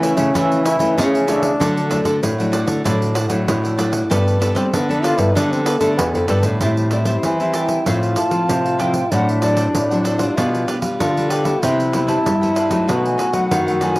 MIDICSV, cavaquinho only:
0, 0, Header, 1, 2, 480
1, 0, Start_track
1, 0, Tempo, 626959
1, 1227, Time_signature, 4, 2, 24, 8
1, 10716, End_track
2, 0, Start_track
2, 0, Title_t, "Cavaquinho"
2, 0, Program_c, 0, 24
2, 16, Note_on_c, 0, 64, 71
2, 24, Note_on_c, 0, 69, 77
2, 30, Note_on_c, 0, 73, 78
2, 33, Note_on_c, 0, 76, 78
2, 118, Note_off_c, 0, 76, 0
2, 127, Note_off_c, 0, 73, 0
2, 127, Note_on_c, 0, 76, 47
2, 133, Note_off_c, 0, 64, 0
2, 136, Note_off_c, 0, 69, 0
2, 137, Note_on_c, 0, 73, 43
2, 145, Note_on_c, 0, 69, 38
2, 249, Note_off_c, 0, 76, 0
2, 253, Note_off_c, 0, 73, 0
2, 257, Note_off_c, 0, 69, 0
2, 261, Note_on_c, 0, 64, 77
2, 267, Note_on_c, 0, 69, 78
2, 274, Note_on_c, 0, 73, 79
2, 280, Note_on_c, 0, 76, 86
2, 486, Note_off_c, 0, 64, 0
2, 490, Note_off_c, 0, 69, 0
2, 493, Note_off_c, 0, 73, 0
2, 495, Note_on_c, 0, 64, 74
2, 496, Note_off_c, 0, 76, 0
2, 499, Note_on_c, 0, 69, 82
2, 502, Note_on_c, 0, 73, 83
2, 505, Note_on_c, 0, 76, 78
2, 571, Note_off_c, 0, 64, 0
2, 573, Note_off_c, 0, 69, 0
2, 575, Note_off_c, 0, 73, 0
2, 576, Note_off_c, 0, 76, 0
2, 604, Note_on_c, 0, 76, 53
2, 614, Note_on_c, 0, 73, 42
2, 622, Note_on_c, 0, 69, 39
2, 846, Note_off_c, 0, 76, 0
2, 851, Note_off_c, 0, 73, 0
2, 855, Note_off_c, 0, 69, 0
2, 869, Note_on_c, 0, 76, 56
2, 879, Note_on_c, 0, 73, 52
2, 887, Note_on_c, 0, 69, 44
2, 972, Note_off_c, 0, 69, 0
2, 973, Note_on_c, 0, 64, 76
2, 977, Note_off_c, 0, 73, 0
2, 979, Note_off_c, 0, 76, 0
2, 981, Note_on_c, 0, 69, 71
2, 986, Note_on_c, 0, 73, 77
2, 992, Note_on_c, 0, 76, 74
2, 1074, Note_off_c, 0, 76, 0
2, 1083, Note_off_c, 0, 73, 0
2, 1083, Note_on_c, 0, 76, 48
2, 1091, Note_off_c, 0, 64, 0
2, 1091, Note_off_c, 0, 69, 0
2, 1093, Note_on_c, 0, 73, 42
2, 1100, Note_on_c, 0, 69, 45
2, 1206, Note_off_c, 0, 76, 0
2, 1210, Note_off_c, 0, 73, 0
2, 1214, Note_off_c, 0, 69, 0
2, 1222, Note_on_c, 0, 62, 78
2, 1228, Note_on_c, 0, 69, 78
2, 1234, Note_on_c, 0, 74, 84
2, 1240, Note_on_c, 0, 78, 80
2, 1443, Note_off_c, 0, 62, 0
2, 1449, Note_off_c, 0, 69, 0
2, 1452, Note_on_c, 0, 62, 50
2, 1454, Note_off_c, 0, 74, 0
2, 1458, Note_on_c, 0, 69, 52
2, 1459, Note_off_c, 0, 78, 0
2, 1463, Note_on_c, 0, 74, 52
2, 1468, Note_on_c, 0, 78, 54
2, 1561, Note_off_c, 0, 62, 0
2, 1564, Note_off_c, 0, 69, 0
2, 1566, Note_off_c, 0, 74, 0
2, 1570, Note_on_c, 0, 62, 70
2, 1571, Note_off_c, 0, 78, 0
2, 1573, Note_on_c, 0, 69, 69
2, 1575, Note_on_c, 0, 74, 68
2, 1581, Note_on_c, 0, 78, 72
2, 1647, Note_off_c, 0, 62, 0
2, 1649, Note_off_c, 0, 69, 0
2, 1650, Note_off_c, 0, 74, 0
2, 1652, Note_off_c, 0, 78, 0
2, 1826, Note_on_c, 0, 78, 52
2, 1837, Note_on_c, 0, 74, 51
2, 1844, Note_on_c, 0, 69, 40
2, 1926, Note_off_c, 0, 69, 0
2, 1928, Note_on_c, 0, 62, 74
2, 1930, Note_off_c, 0, 74, 0
2, 1935, Note_on_c, 0, 69, 75
2, 1936, Note_off_c, 0, 78, 0
2, 1939, Note_on_c, 0, 74, 84
2, 1944, Note_on_c, 0, 78, 86
2, 2030, Note_off_c, 0, 78, 0
2, 2039, Note_on_c, 0, 78, 51
2, 2040, Note_off_c, 0, 74, 0
2, 2047, Note_off_c, 0, 62, 0
2, 2048, Note_off_c, 0, 69, 0
2, 2057, Note_on_c, 0, 69, 41
2, 2163, Note_off_c, 0, 78, 0
2, 2171, Note_off_c, 0, 69, 0
2, 2177, Note_on_c, 0, 62, 74
2, 2186, Note_on_c, 0, 69, 79
2, 2191, Note_on_c, 0, 74, 83
2, 2195, Note_on_c, 0, 78, 82
2, 2402, Note_off_c, 0, 62, 0
2, 2405, Note_off_c, 0, 69, 0
2, 2410, Note_off_c, 0, 74, 0
2, 2411, Note_off_c, 0, 78, 0
2, 2411, Note_on_c, 0, 62, 75
2, 2414, Note_on_c, 0, 69, 72
2, 2419, Note_on_c, 0, 74, 78
2, 2420, Note_on_c, 0, 78, 92
2, 2487, Note_off_c, 0, 62, 0
2, 2488, Note_off_c, 0, 69, 0
2, 2491, Note_off_c, 0, 74, 0
2, 2491, Note_off_c, 0, 78, 0
2, 2516, Note_on_c, 0, 78, 54
2, 2527, Note_on_c, 0, 74, 43
2, 2535, Note_on_c, 0, 69, 44
2, 2760, Note_off_c, 0, 78, 0
2, 2766, Note_off_c, 0, 74, 0
2, 2769, Note_off_c, 0, 69, 0
2, 2782, Note_on_c, 0, 78, 51
2, 2794, Note_on_c, 0, 74, 50
2, 2802, Note_on_c, 0, 69, 47
2, 2887, Note_off_c, 0, 69, 0
2, 2891, Note_off_c, 0, 74, 0
2, 2891, Note_on_c, 0, 62, 64
2, 2893, Note_off_c, 0, 78, 0
2, 2896, Note_on_c, 0, 69, 74
2, 2901, Note_on_c, 0, 74, 73
2, 2907, Note_on_c, 0, 78, 76
2, 2991, Note_off_c, 0, 78, 0
2, 2999, Note_off_c, 0, 74, 0
2, 3000, Note_on_c, 0, 78, 49
2, 3007, Note_off_c, 0, 62, 0
2, 3008, Note_off_c, 0, 69, 0
2, 3008, Note_on_c, 0, 74, 46
2, 3017, Note_on_c, 0, 69, 42
2, 3122, Note_off_c, 0, 78, 0
2, 3126, Note_off_c, 0, 74, 0
2, 3130, Note_off_c, 0, 69, 0
2, 3137, Note_on_c, 0, 67, 81
2, 3145, Note_on_c, 0, 69, 84
2, 3150, Note_on_c, 0, 71, 82
2, 3155, Note_on_c, 0, 74, 94
2, 3357, Note_off_c, 0, 67, 0
2, 3365, Note_off_c, 0, 69, 0
2, 3366, Note_on_c, 0, 67, 55
2, 3369, Note_off_c, 0, 71, 0
2, 3374, Note_on_c, 0, 69, 54
2, 3375, Note_off_c, 0, 74, 0
2, 3378, Note_on_c, 0, 71, 56
2, 3384, Note_on_c, 0, 74, 61
2, 3471, Note_off_c, 0, 67, 0
2, 3473, Note_off_c, 0, 69, 0
2, 3478, Note_off_c, 0, 71, 0
2, 3481, Note_off_c, 0, 74, 0
2, 3481, Note_on_c, 0, 67, 69
2, 3483, Note_on_c, 0, 69, 73
2, 3487, Note_on_c, 0, 71, 83
2, 3490, Note_on_c, 0, 74, 72
2, 3560, Note_off_c, 0, 67, 0
2, 3561, Note_off_c, 0, 69, 0
2, 3564, Note_off_c, 0, 71, 0
2, 3565, Note_off_c, 0, 74, 0
2, 3745, Note_on_c, 0, 74, 47
2, 3757, Note_on_c, 0, 71, 50
2, 3764, Note_on_c, 0, 69, 47
2, 3846, Note_off_c, 0, 69, 0
2, 3849, Note_on_c, 0, 67, 72
2, 3854, Note_off_c, 0, 74, 0
2, 3855, Note_off_c, 0, 71, 0
2, 3855, Note_on_c, 0, 69, 79
2, 3864, Note_on_c, 0, 71, 83
2, 3868, Note_on_c, 0, 74, 85
2, 3947, Note_off_c, 0, 74, 0
2, 3956, Note_off_c, 0, 71, 0
2, 3956, Note_on_c, 0, 74, 48
2, 3964, Note_off_c, 0, 69, 0
2, 3965, Note_off_c, 0, 67, 0
2, 3965, Note_on_c, 0, 71, 46
2, 3973, Note_on_c, 0, 69, 45
2, 4079, Note_off_c, 0, 74, 0
2, 4084, Note_off_c, 0, 71, 0
2, 4088, Note_off_c, 0, 69, 0
2, 4097, Note_on_c, 0, 67, 76
2, 4106, Note_on_c, 0, 69, 80
2, 4110, Note_on_c, 0, 71, 75
2, 4115, Note_on_c, 0, 74, 76
2, 4321, Note_off_c, 0, 67, 0
2, 4326, Note_off_c, 0, 69, 0
2, 4328, Note_off_c, 0, 71, 0
2, 4331, Note_off_c, 0, 74, 0
2, 4331, Note_on_c, 0, 67, 79
2, 4335, Note_on_c, 0, 69, 86
2, 4337, Note_on_c, 0, 71, 76
2, 4340, Note_on_c, 0, 74, 85
2, 4405, Note_off_c, 0, 67, 0
2, 4407, Note_off_c, 0, 69, 0
2, 4408, Note_off_c, 0, 71, 0
2, 4410, Note_off_c, 0, 74, 0
2, 4438, Note_on_c, 0, 74, 52
2, 4450, Note_on_c, 0, 71, 46
2, 4455, Note_on_c, 0, 69, 41
2, 4680, Note_off_c, 0, 74, 0
2, 4685, Note_off_c, 0, 71, 0
2, 4688, Note_off_c, 0, 69, 0
2, 4701, Note_on_c, 0, 74, 52
2, 4713, Note_on_c, 0, 71, 50
2, 4721, Note_on_c, 0, 69, 45
2, 4802, Note_off_c, 0, 69, 0
2, 4806, Note_on_c, 0, 67, 66
2, 4809, Note_off_c, 0, 71, 0
2, 4811, Note_off_c, 0, 74, 0
2, 4811, Note_on_c, 0, 69, 73
2, 4818, Note_on_c, 0, 71, 79
2, 4823, Note_on_c, 0, 74, 83
2, 4909, Note_off_c, 0, 74, 0
2, 4919, Note_on_c, 0, 74, 52
2, 4920, Note_off_c, 0, 71, 0
2, 4924, Note_off_c, 0, 67, 0
2, 4926, Note_off_c, 0, 69, 0
2, 4929, Note_on_c, 0, 71, 40
2, 4936, Note_on_c, 0, 69, 42
2, 5040, Note_off_c, 0, 74, 0
2, 5045, Note_off_c, 0, 71, 0
2, 5049, Note_off_c, 0, 69, 0
2, 5057, Note_on_c, 0, 67, 72
2, 5065, Note_on_c, 0, 72, 70
2, 5068, Note_on_c, 0, 76, 67
2, 5074, Note_on_c, 0, 81, 80
2, 5278, Note_off_c, 0, 67, 0
2, 5283, Note_off_c, 0, 72, 0
2, 5287, Note_on_c, 0, 67, 49
2, 5290, Note_off_c, 0, 76, 0
2, 5292, Note_on_c, 0, 72, 49
2, 5295, Note_off_c, 0, 81, 0
2, 5299, Note_on_c, 0, 76, 50
2, 5304, Note_on_c, 0, 81, 51
2, 5389, Note_off_c, 0, 67, 0
2, 5394, Note_off_c, 0, 72, 0
2, 5398, Note_off_c, 0, 76, 0
2, 5399, Note_on_c, 0, 67, 66
2, 5400, Note_off_c, 0, 81, 0
2, 5403, Note_on_c, 0, 72, 65
2, 5408, Note_on_c, 0, 76, 67
2, 5409, Note_on_c, 0, 81, 63
2, 5479, Note_off_c, 0, 67, 0
2, 5481, Note_off_c, 0, 72, 0
2, 5483, Note_off_c, 0, 76, 0
2, 5484, Note_off_c, 0, 81, 0
2, 5662, Note_on_c, 0, 81, 45
2, 5674, Note_on_c, 0, 76, 43
2, 5682, Note_on_c, 0, 72, 40
2, 5761, Note_off_c, 0, 72, 0
2, 5763, Note_on_c, 0, 67, 64
2, 5768, Note_off_c, 0, 76, 0
2, 5770, Note_on_c, 0, 72, 64
2, 5772, Note_off_c, 0, 81, 0
2, 5778, Note_on_c, 0, 76, 73
2, 5782, Note_on_c, 0, 81, 82
2, 5860, Note_off_c, 0, 81, 0
2, 5870, Note_on_c, 0, 81, 49
2, 5873, Note_off_c, 0, 76, 0
2, 5879, Note_off_c, 0, 72, 0
2, 5882, Note_off_c, 0, 67, 0
2, 5882, Note_on_c, 0, 76, 42
2, 5888, Note_on_c, 0, 72, 40
2, 5995, Note_off_c, 0, 81, 0
2, 6002, Note_off_c, 0, 76, 0
2, 6005, Note_off_c, 0, 72, 0
2, 6016, Note_on_c, 0, 69, 68
2, 6021, Note_on_c, 0, 72, 69
2, 6026, Note_on_c, 0, 77, 70
2, 6237, Note_off_c, 0, 69, 0
2, 6242, Note_off_c, 0, 72, 0
2, 6243, Note_on_c, 0, 64, 70
2, 6246, Note_off_c, 0, 77, 0
2, 6247, Note_on_c, 0, 69, 73
2, 6252, Note_on_c, 0, 72, 74
2, 6255, Note_on_c, 0, 77, 75
2, 6321, Note_off_c, 0, 64, 0
2, 6323, Note_off_c, 0, 69, 0
2, 6325, Note_off_c, 0, 72, 0
2, 6327, Note_off_c, 0, 77, 0
2, 6353, Note_on_c, 0, 77, 54
2, 6364, Note_on_c, 0, 72, 45
2, 6371, Note_on_c, 0, 69, 38
2, 6597, Note_off_c, 0, 77, 0
2, 6603, Note_off_c, 0, 72, 0
2, 6607, Note_off_c, 0, 69, 0
2, 6620, Note_on_c, 0, 77, 47
2, 6630, Note_on_c, 0, 72, 46
2, 6638, Note_on_c, 0, 69, 39
2, 6723, Note_off_c, 0, 69, 0
2, 6727, Note_on_c, 0, 64, 72
2, 6730, Note_off_c, 0, 72, 0
2, 6731, Note_off_c, 0, 77, 0
2, 6733, Note_on_c, 0, 69, 67
2, 6739, Note_on_c, 0, 72, 77
2, 6746, Note_on_c, 0, 77, 76
2, 6830, Note_off_c, 0, 77, 0
2, 6839, Note_off_c, 0, 72, 0
2, 6840, Note_on_c, 0, 77, 45
2, 6845, Note_off_c, 0, 64, 0
2, 6847, Note_off_c, 0, 69, 0
2, 6848, Note_on_c, 0, 72, 44
2, 6856, Note_on_c, 0, 69, 41
2, 6961, Note_off_c, 0, 77, 0
2, 6965, Note_off_c, 0, 72, 0
2, 6969, Note_off_c, 0, 69, 0
2, 6976, Note_on_c, 0, 62, 65
2, 6982, Note_on_c, 0, 69, 70
2, 6987, Note_on_c, 0, 72, 76
2, 6993, Note_on_c, 0, 78, 83
2, 7197, Note_off_c, 0, 62, 0
2, 7205, Note_off_c, 0, 69, 0
2, 7206, Note_on_c, 0, 62, 50
2, 7210, Note_off_c, 0, 72, 0
2, 7214, Note_on_c, 0, 69, 54
2, 7215, Note_off_c, 0, 78, 0
2, 7219, Note_on_c, 0, 72, 52
2, 7224, Note_on_c, 0, 78, 55
2, 7312, Note_off_c, 0, 62, 0
2, 7315, Note_off_c, 0, 69, 0
2, 7318, Note_off_c, 0, 72, 0
2, 7321, Note_on_c, 0, 62, 65
2, 7323, Note_off_c, 0, 78, 0
2, 7324, Note_on_c, 0, 69, 61
2, 7327, Note_on_c, 0, 72, 63
2, 7332, Note_on_c, 0, 78, 72
2, 7400, Note_off_c, 0, 62, 0
2, 7402, Note_off_c, 0, 69, 0
2, 7404, Note_off_c, 0, 72, 0
2, 7406, Note_off_c, 0, 78, 0
2, 7583, Note_on_c, 0, 78, 49
2, 7594, Note_on_c, 0, 72, 41
2, 7602, Note_on_c, 0, 69, 39
2, 7686, Note_off_c, 0, 69, 0
2, 7689, Note_on_c, 0, 62, 60
2, 7691, Note_off_c, 0, 72, 0
2, 7693, Note_off_c, 0, 78, 0
2, 7696, Note_on_c, 0, 69, 67
2, 7700, Note_on_c, 0, 72, 70
2, 7705, Note_on_c, 0, 78, 73
2, 7787, Note_off_c, 0, 78, 0
2, 7796, Note_on_c, 0, 78, 49
2, 7798, Note_off_c, 0, 72, 0
2, 7805, Note_off_c, 0, 69, 0
2, 7806, Note_off_c, 0, 62, 0
2, 7807, Note_on_c, 0, 72, 44
2, 7814, Note_on_c, 0, 69, 35
2, 7920, Note_off_c, 0, 78, 0
2, 7925, Note_off_c, 0, 72, 0
2, 7929, Note_off_c, 0, 69, 0
2, 7941, Note_on_c, 0, 62, 67
2, 7946, Note_on_c, 0, 67, 74
2, 7953, Note_on_c, 0, 71, 68
2, 7958, Note_on_c, 0, 77, 79
2, 8165, Note_off_c, 0, 62, 0
2, 8168, Note_off_c, 0, 67, 0
2, 8172, Note_off_c, 0, 71, 0
2, 8173, Note_off_c, 0, 77, 0
2, 8174, Note_on_c, 0, 62, 70
2, 8177, Note_on_c, 0, 67, 70
2, 8181, Note_on_c, 0, 71, 74
2, 8182, Note_on_c, 0, 77, 79
2, 8248, Note_off_c, 0, 62, 0
2, 8249, Note_off_c, 0, 67, 0
2, 8251, Note_off_c, 0, 71, 0
2, 8251, Note_off_c, 0, 77, 0
2, 8282, Note_on_c, 0, 77, 46
2, 8292, Note_on_c, 0, 71, 43
2, 8300, Note_on_c, 0, 67, 43
2, 8523, Note_off_c, 0, 77, 0
2, 8528, Note_off_c, 0, 71, 0
2, 8532, Note_off_c, 0, 67, 0
2, 8549, Note_on_c, 0, 77, 48
2, 8560, Note_on_c, 0, 71, 48
2, 8567, Note_on_c, 0, 67, 40
2, 8649, Note_off_c, 0, 67, 0
2, 8653, Note_on_c, 0, 62, 67
2, 8657, Note_off_c, 0, 71, 0
2, 8657, Note_off_c, 0, 77, 0
2, 8658, Note_on_c, 0, 67, 64
2, 8666, Note_on_c, 0, 71, 71
2, 8670, Note_on_c, 0, 77, 77
2, 8751, Note_off_c, 0, 77, 0
2, 8760, Note_on_c, 0, 77, 46
2, 8763, Note_off_c, 0, 71, 0
2, 8768, Note_off_c, 0, 62, 0
2, 8769, Note_off_c, 0, 67, 0
2, 8772, Note_on_c, 0, 71, 46
2, 8778, Note_on_c, 0, 67, 34
2, 8883, Note_off_c, 0, 77, 0
2, 8888, Note_off_c, 0, 71, 0
2, 8891, Note_off_c, 0, 67, 0
2, 8898, Note_on_c, 0, 64, 70
2, 8904, Note_on_c, 0, 72, 78
2, 8908, Note_on_c, 0, 71, 76
2, 8917, Note_on_c, 0, 79, 78
2, 9119, Note_off_c, 0, 64, 0
2, 9124, Note_off_c, 0, 72, 0
2, 9128, Note_on_c, 0, 64, 44
2, 9131, Note_off_c, 0, 71, 0
2, 9133, Note_on_c, 0, 72, 47
2, 9135, Note_off_c, 0, 79, 0
2, 9140, Note_on_c, 0, 71, 51
2, 9144, Note_on_c, 0, 79, 55
2, 9231, Note_off_c, 0, 64, 0
2, 9236, Note_off_c, 0, 72, 0
2, 9238, Note_off_c, 0, 71, 0
2, 9241, Note_off_c, 0, 79, 0
2, 9241, Note_on_c, 0, 64, 68
2, 9245, Note_on_c, 0, 72, 68
2, 9248, Note_on_c, 0, 71, 72
2, 9250, Note_on_c, 0, 79, 70
2, 9322, Note_off_c, 0, 64, 0
2, 9324, Note_off_c, 0, 72, 0
2, 9325, Note_off_c, 0, 71, 0
2, 9326, Note_off_c, 0, 79, 0
2, 9502, Note_on_c, 0, 79, 48
2, 9510, Note_on_c, 0, 71, 41
2, 9519, Note_on_c, 0, 72, 38
2, 9605, Note_off_c, 0, 72, 0
2, 9608, Note_on_c, 0, 64, 70
2, 9611, Note_off_c, 0, 71, 0
2, 9614, Note_off_c, 0, 79, 0
2, 9614, Note_on_c, 0, 72, 73
2, 9620, Note_on_c, 0, 71, 73
2, 9625, Note_on_c, 0, 79, 67
2, 9708, Note_off_c, 0, 79, 0
2, 9717, Note_on_c, 0, 79, 49
2, 9719, Note_off_c, 0, 71, 0
2, 9726, Note_off_c, 0, 72, 0
2, 9727, Note_off_c, 0, 64, 0
2, 9728, Note_on_c, 0, 71, 41
2, 9736, Note_on_c, 0, 72, 41
2, 9842, Note_off_c, 0, 79, 0
2, 9847, Note_off_c, 0, 71, 0
2, 9851, Note_off_c, 0, 72, 0
2, 9856, Note_on_c, 0, 63, 65
2, 9864, Note_on_c, 0, 69, 69
2, 9870, Note_on_c, 0, 71, 68
2, 9875, Note_on_c, 0, 75, 80
2, 10078, Note_off_c, 0, 63, 0
2, 10082, Note_off_c, 0, 69, 0
2, 10086, Note_off_c, 0, 71, 0
2, 10087, Note_on_c, 0, 63, 64
2, 10088, Note_off_c, 0, 75, 0
2, 10091, Note_on_c, 0, 69, 73
2, 10096, Note_on_c, 0, 71, 70
2, 10097, Note_on_c, 0, 75, 78
2, 10165, Note_off_c, 0, 63, 0
2, 10167, Note_off_c, 0, 69, 0
2, 10170, Note_off_c, 0, 71, 0
2, 10170, Note_off_c, 0, 75, 0
2, 10200, Note_on_c, 0, 75, 50
2, 10210, Note_on_c, 0, 71, 45
2, 10218, Note_on_c, 0, 69, 38
2, 10443, Note_off_c, 0, 75, 0
2, 10449, Note_off_c, 0, 71, 0
2, 10453, Note_off_c, 0, 69, 0
2, 10463, Note_on_c, 0, 75, 48
2, 10472, Note_on_c, 0, 71, 43
2, 10480, Note_on_c, 0, 69, 43
2, 10568, Note_off_c, 0, 69, 0
2, 10571, Note_on_c, 0, 63, 63
2, 10573, Note_off_c, 0, 71, 0
2, 10575, Note_off_c, 0, 75, 0
2, 10577, Note_on_c, 0, 69, 71
2, 10582, Note_on_c, 0, 71, 68
2, 10588, Note_on_c, 0, 75, 72
2, 10671, Note_off_c, 0, 75, 0
2, 10680, Note_on_c, 0, 75, 44
2, 10682, Note_off_c, 0, 71, 0
2, 10689, Note_off_c, 0, 63, 0
2, 10689, Note_off_c, 0, 69, 0
2, 10691, Note_on_c, 0, 71, 44
2, 10716, Note_off_c, 0, 71, 0
2, 10716, Note_off_c, 0, 75, 0
2, 10716, End_track
0, 0, End_of_file